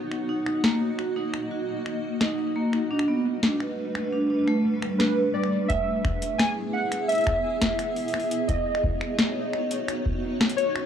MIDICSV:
0, 0, Header, 1, 6, 480
1, 0, Start_track
1, 0, Tempo, 697674
1, 80, Time_signature, 4, 2, 24, 8
1, 7470, End_track
2, 0, Start_track
2, 0, Title_t, "Synth keys"
2, 0, Program_c, 0, 88
2, 3430, Note_on_c, 0, 71, 84
2, 3671, Note_on_c, 0, 74, 83
2, 3682, Note_off_c, 0, 71, 0
2, 3899, Note_off_c, 0, 74, 0
2, 3910, Note_on_c, 0, 76, 98
2, 4391, Note_on_c, 0, 80, 107
2, 4410, Note_off_c, 0, 76, 0
2, 4487, Note_off_c, 0, 80, 0
2, 4631, Note_on_c, 0, 78, 91
2, 4858, Note_off_c, 0, 78, 0
2, 4871, Note_on_c, 0, 76, 102
2, 5832, Note_on_c, 0, 75, 84
2, 5864, Note_off_c, 0, 76, 0
2, 6769, Note_off_c, 0, 75, 0
2, 7269, Note_on_c, 0, 73, 108
2, 7470, Note_off_c, 0, 73, 0
2, 7470, End_track
3, 0, Start_track
3, 0, Title_t, "Synth texture"
3, 0, Program_c, 1, 99
3, 0, Note_on_c, 1, 66, 77
3, 0, Note_on_c, 1, 78, 80
3, 3930, Note_off_c, 1, 78, 0
3, 3931, Note_off_c, 1, 66, 0
3, 7470, End_track
4, 0, Start_track
4, 0, Title_t, "Ambient pad"
4, 0, Program_c, 2, 92
4, 0, Note_on_c, 2, 63, 67
4, 0, Note_on_c, 2, 66, 66
4, 79, Note_on_c, 2, 75, 78
4, 80, Note_on_c, 2, 58, 75
4, 1972, Note_off_c, 2, 66, 0
4, 1973, Note_off_c, 2, 63, 0
4, 1980, Note_off_c, 2, 75, 0
4, 1981, Note_off_c, 2, 58, 0
4, 2000, Note_on_c, 2, 55, 69
4, 2000, Note_on_c, 2, 57, 76
4, 2000, Note_on_c, 2, 62, 68
4, 2000, Note_on_c, 2, 71, 84
4, 3901, Note_off_c, 2, 55, 0
4, 3901, Note_off_c, 2, 57, 0
4, 3901, Note_off_c, 2, 62, 0
4, 3901, Note_off_c, 2, 71, 0
4, 3919, Note_on_c, 2, 59, 79
4, 3919, Note_on_c, 2, 64, 70
4, 3919, Note_on_c, 2, 68, 70
4, 3919, Note_on_c, 2, 76, 88
4, 5820, Note_off_c, 2, 64, 0
4, 5820, Note_off_c, 2, 68, 0
4, 5820, Note_off_c, 2, 76, 0
4, 5839, Note_on_c, 2, 63, 74
4, 5839, Note_on_c, 2, 66, 72
4, 5840, Note_on_c, 2, 73, 83
4, 7470, Note_off_c, 2, 59, 0
4, 7470, Note_off_c, 2, 63, 0
4, 7470, Note_off_c, 2, 66, 0
4, 7470, Note_off_c, 2, 73, 0
4, 7470, End_track
5, 0, Start_track
5, 0, Title_t, "Vibraphone"
5, 0, Program_c, 3, 11
5, 200, Note_on_c, 3, 63, 92
5, 253, Note_off_c, 3, 63, 0
5, 320, Note_on_c, 3, 63, 69
5, 409, Note_off_c, 3, 63, 0
5, 440, Note_on_c, 3, 58, 86
5, 554, Note_off_c, 3, 58, 0
5, 560, Note_on_c, 3, 63, 71
5, 648, Note_off_c, 3, 63, 0
5, 680, Note_on_c, 3, 66, 88
5, 733, Note_off_c, 3, 66, 0
5, 800, Note_on_c, 3, 63, 93
5, 888, Note_off_c, 3, 63, 0
5, 1040, Note_on_c, 3, 66, 75
5, 1128, Note_off_c, 3, 66, 0
5, 1520, Note_on_c, 3, 63, 88
5, 1573, Note_off_c, 3, 63, 0
5, 1640, Note_on_c, 3, 63, 69
5, 1728, Note_off_c, 3, 63, 0
5, 1759, Note_on_c, 3, 58, 96
5, 1874, Note_off_c, 3, 58, 0
5, 1880, Note_on_c, 3, 63, 74
5, 1968, Note_off_c, 3, 63, 0
5, 2000, Note_on_c, 3, 62, 98
5, 2053, Note_off_c, 3, 62, 0
5, 2120, Note_on_c, 3, 59, 92
5, 2208, Note_off_c, 3, 59, 0
5, 2359, Note_on_c, 3, 62, 67
5, 2448, Note_off_c, 3, 62, 0
5, 2839, Note_on_c, 3, 62, 87
5, 2892, Note_off_c, 3, 62, 0
5, 2959, Note_on_c, 3, 62, 76
5, 3048, Note_off_c, 3, 62, 0
5, 3079, Note_on_c, 3, 57, 99
5, 3194, Note_off_c, 3, 57, 0
5, 3319, Note_on_c, 3, 55, 69
5, 3434, Note_off_c, 3, 55, 0
5, 3438, Note_on_c, 3, 62, 77
5, 3553, Note_off_c, 3, 62, 0
5, 3678, Note_on_c, 3, 55, 74
5, 3767, Note_off_c, 3, 55, 0
5, 7470, End_track
6, 0, Start_track
6, 0, Title_t, "Drums"
6, 79, Note_on_c, 9, 26, 44
6, 148, Note_off_c, 9, 26, 0
6, 319, Note_on_c, 9, 26, 67
6, 388, Note_off_c, 9, 26, 0
6, 439, Note_on_c, 9, 38, 111
6, 508, Note_off_c, 9, 38, 0
6, 679, Note_on_c, 9, 26, 50
6, 748, Note_off_c, 9, 26, 0
6, 919, Note_on_c, 9, 26, 69
6, 988, Note_off_c, 9, 26, 0
6, 1279, Note_on_c, 9, 26, 45
6, 1348, Note_off_c, 9, 26, 0
6, 1519, Note_on_c, 9, 26, 68
6, 1519, Note_on_c, 9, 38, 110
6, 1588, Note_off_c, 9, 26, 0
6, 1588, Note_off_c, 9, 38, 0
6, 1879, Note_on_c, 9, 26, 49
6, 1948, Note_off_c, 9, 26, 0
6, 2059, Note_on_c, 9, 26, 66
6, 2128, Note_off_c, 9, 26, 0
6, 2359, Note_on_c, 9, 38, 108
6, 2428, Note_off_c, 9, 38, 0
6, 2480, Note_on_c, 9, 26, 47
6, 2548, Note_off_c, 9, 26, 0
6, 2719, Note_on_c, 9, 26, 72
6, 2788, Note_off_c, 9, 26, 0
6, 3079, Note_on_c, 9, 26, 44
6, 3148, Note_off_c, 9, 26, 0
6, 3319, Note_on_c, 9, 26, 66
6, 3388, Note_off_c, 9, 26, 0
6, 3439, Note_on_c, 9, 38, 111
6, 3508, Note_off_c, 9, 38, 0
6, 3740, Note_on_c, 9, 26, 46
6, 3808, Note_off_c, 9, 26, 0
6, 3919, Note_on_c, 9, 42, 52
6, 3920, Note_on_c, 9, 36, 105
6, 3988, Note_off_c, 9, 36, 0
6, 3988, Note_off_c, 9, 42, 0
6, 4160, Note_on_c, 9, 26, 55
6, 4160, Note_on_c, 9, 36, 125
6, 4229, Note_off_c, 9, 26, 0
6, 4229, Note_off_c, 9, 36, 0
6, 4280, Note_on_c, 9, 42, 69
6, 4348, Note_off_c, 9, 42, 0
6, 4399, Note_on_c, 9, 26, 81
6, 4399, Note_on_c, 9, 38, 120
6, 4399, Note_on_c, 9, 46, 63
6, 4468, Note_off_c, 9, 26, 0
6, 4468, Note_off_c, 9, 38, 0
6, 4468, Note_off_c, 9, 46, 0
6, 4759, Note_on_c, 9, 26, 53
6, 4759, Note_on_c, 9, 42, 69
6, 4828, Note_off_c, 9, 26, 0
6, 4828, Note_off_c, 9, 42, 0
6, 4879, Note_on_c, 9, 42, 52
6, 4899, Note_off_c, 9, 42, 0
6, 4899, Note_on_c, 9, 42, 42
6, 4919, Note_off_c, 9, 42, 0
6, 4919, Note_on_c, 9, 42, 34
6, 4939, Note_off_c, 9, 42, 0
6, 4939, Note_on_c, 9, 42, 28
6, 4980, Note_off_c, 9, 42, 0
6, 4980, Note_on_c, 9, 42, 20
6, 5000, Note_on_c, 9, 26, 83
6, 5000, Note_on_c, 9, 36, 103
6, 5049, Note_off_c, 9, 42, 0
6, 5068, Note_off_c, 9, 36, 0
6, 5069, Note_off_c, 9, 26, 0
6, 5239, Note_on_c, 9, 38, 113
6, 5239, Note_on_c, 9, 42, 69
6, 5240, Note_on_c, 9, 36, 80
6, 5308, Note_off_c, 9, 36, 0
6, 5308, Note_off_c, 9, 38, 0
6, 5308, Note_off_c, 9, 42, 0
6, 5359, Note_on_c, 9, 26, 55
6, 5359, Note_on_c, 9, 42, 53
6, 5428, Note_off_c, 9, 26, 0
6, 5428, Note_off_c, 9, 42, 0
6, 5479, Note_on_c, 9, 46, 55
6, 5548, Note_off_c, 9, 46, 0
6, 5560, Note_on_c, 9, 46, 46
6, 5599, Note_on_c, 9, 26, 77
6, 5629, Note_off_c, 9, 46, 0
6, 5639, Note_on_c, 9, 46, 40
6, 5668, Note_off_c, 9, 26, 0
6, 5708, Note_off_c, 9, 46, 0
6, 5719, Note_on_c, 9, 42, 69
6, 5788, Note_off_c, 9, 42, 0
6, 5839, Note_on_c, 9, 42, 54
6, 5840, Note_on_c, 9, 36, 107
6, 5908, Note_off_c, 9, 42, 0
6, 5909, Note_off_c, 9, 36, 0
6, 6019, Note_on_c, 9, 26, 50
6, 6080, Note_on_c, 9, 36, 120
6, 6088, Note_off_c, 9, 26, 0
6, 6149, Note_off_c, 9, 36, 0
6, 6199, Note_on_c, 9, 26, 80
6, 6268, Note_off_c, 9, 26, 0
6, 6320, Note_on_c, 9, 38, 126
6, 6320, Note_on_c, 9, 42, 55
6, 6388, Note_off_c, 9, 38, 0
6, 6388, Note_off_c, 9, 42, 0
6, 6560, Note_on_c, 9, 26, 56
6, 6628, Note_off_c, 9, 26, 0
6, 6680, Note_on_c, 9, 42, 69
6, 6749, Note_off_c, 9, 42, 0
6, 6800, Note_on_c, 9, 26, 80
6, 6800, Note_on_c, 9, 42, 53
6, 6869, Note_off_c, 9, 26, 0
6, 6869, Note_off_c, 9, 42, 0
6, 6920, Note_on_c, 9, 36, 107
6, 6989, Note_off_c, 9, 36, 0
6, 7160, Note_on_c, 9, 26, 51
6, 7160, Note_on_c, 9, 38, 120
6, 7220, Note_on_c, 9, 42, 68
6, 7229, Note_off_c, 9, 26, 0
6, 7229, Note_off_c, 9, 38, 0
6, 7280, Note_off_c, 9, 42, 0
6, 7280, Note_on_c, 9, 42, 55
6, 7349, Note_off_c, 9, 42, 0
6, 7400, Note_on_c, 9, 26, 83
6, 7469, Note_off_c, 9, 26, 0
6, 7470, End_track
0, 0, End_of_file